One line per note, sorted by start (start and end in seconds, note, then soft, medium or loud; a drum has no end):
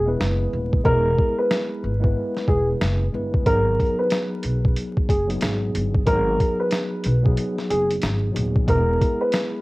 0.00 0.15 E1 loud
0.06 0.79 G#3 medium
0.06 0.80 B3 medium
0.06 0.80 E4 medium
0.06 0.81 B4 loud
0.20 0.48 F#1 loud
0.20 snare loud
0.53 0.81 D#1 medium
0.73 kick medium
0.84 1.13 E1 loud
0.84 1.91 G#3 loud
0.84 1.92 B3 medium
0.84 1.92 E4 medium
0.84 1.93 G#4 loud
0.84 1.35 A#4 loud
0.84 kick loud
1.18 kick loud
1.38 2.12 B4 medium
1.51 snare loud
1.84 2.11 G#1 medium
2.00 3.05 G#3 medium
2.00 3.05 B3 medium
2.00 3.06 E4 medium
2.00 3.06 B4 loud
2.04 kick medium
2.37 snare soft
2.48 2.76 E1 medium
2.48 2.67 G#4 medium
2.48 kick loud
2.81 3.09 F#1 loud
2.81 snare loud
3.12 3.42 G1 medium
3.12 3.43 G#3 medium
3.12 3.44 B3 medium
3.12 3.44 E4 medium
3.12 3.45 B4 medium
3.34 kick medium
3.46 3.74 G#1 loud
3.46 5.11 F#3 medium
3.46 5.12 B3 medium
3.46 5.12 D#4 medium
3.46 5.13 G#4 loud
3.46 3.96 A#4 loud
3.46 kick loud
3.46 closed hi-hat medium
3.79 kick loud
3.79 closed hi-hat medium
3.99 4.72 B4 medium
4.10 snare loud
4.10 closed hi-hat medium
4.43 4.72 B1 medium
4.43 closed hi-hat medium
4.65 kick medium
4.76 closed hi-hat medium
4.97 kick medium
5.09 5.37 F#1 medium
5.09 5.27 G#4 medium
5.09 kick loud
5.09 closed hi-hat medium
5.27 6.01 F#3 medium
5.27 6.01 B3 medium
5.27 6.02 D#4 medium
5.27 6.02 G#4 loud
5.27 closed hi-hat soft
5.41 5.70 G#1 medium
5.41 snare loud
5.41 closed hi-hat medium
5.75 6.03 G1 medium
5.75 closed hi-hat medium
5.95 kick medium
6.06 6.35 G#1 loud
6.06 7.13 F#3 medium
6.06 7.13 B3 medium
6.06 7.14 D#4 medium
6.06 7.14 G#4 loud
6.06 6.57 A#4 loud
6.06 kick loud
6.06 closed hi-hat medium
6.40 kick medium
6.40 closed hi-hat medium
6.60 7.33 B4 medium
6.71 snare loud
6.71 closed hi-hat medium
7.04 7.33 B1 loud
7.04 closed hi-hat medium
7.23 8.27 F#3 medium
7.23 8.28 B3 medium
7.23 8.28 D#4 medium
7.23 8.28 G#4 loud
7.23 kick medium
7.37 closed hi-hat medium
7.59 snare soft
7.70 7.98 F#1 medium
7.70 7.88 G#4 medium
7.70 closed hi-hat medium
7.91 closed hi-hat soft
8.02 8.31 G#1 medium
8.02 snare loud
8.02 closed hi-hat medium
8.32 8.63 D#1 medium
8.32 8.64 F#3 medium
8.32 8.65 B3 medium
8.32 8.65 D#4 medium
8.32 8.66 G#4 medium
8.32 closed hi-hat medium
8.56 kick loud
8.66 8.96 E1 loud
8.66 9.62 G#3 loud
8.66 9.62 B3 medium
8.66 9.62 E4 medium
8.66 9.62 G#4 loud
8.66 9.18 A#4 medium
8.66 kick loud
8.66 closed hi-hat medium
9.01 kick loud
9.01 closed hi-hat medium
9.21 9.62 B4 medium
9.32 snare loud
9.32 closed hi-hat medium